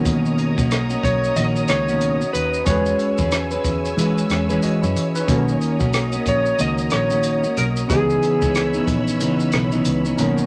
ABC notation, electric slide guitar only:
X:1
M:4/4
L:1/8
Q:"Swing 16ths" 1/4=92
K:B
V:1 name="Electric slide guitar"
z3 c d c2 B | c3 z4 z | z3 c d c2 A | G3 z4 z |]